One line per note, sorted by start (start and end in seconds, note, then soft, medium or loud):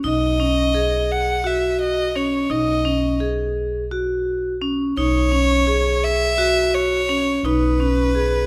0.04 2.47 B1 medium
0.04 0.35 D#4 medium
0.04 1.13 D#5 medium
0.40 0.70 C#4 medium
0.75 1.36 G#4 medium
1.11 1.48 F#5 medium
1.44 2.06 F#4 medium
1.44 1.81 E5 medium
1.82 2.17 D#5 medium
2.15 2.46 C#4 medium
2.15 2.53 C#5 medium
2.50 4.93 B1 medium
2.50 2.81 D#4 medium
2.50 3.21 D#5 medium
2.85 3.16 C#4 medium
3.20 3.82 G#4 medium
3.91 4.52 F#4 medium
4.62 4.92 C#4 medium
4.97 7.40 B1 medium
4.97 5.28 D#4 medium
4.97 6.05 C#5 loud
5.32 5.63 C#4 medium
5.67 6.29 G#4 medium
6.04 6.76 E5 loud
6.38 6.99 F#4 medium
6.75 7.47 C#5 medium
7.09 7.40 C#4 medium
7.43 8.46 B1 medium
7.43 7.75 D#4 medium
7.43 8.46 B4 medium
7.80 8.10 C#4 medium
8.15 8.46 G#4 medium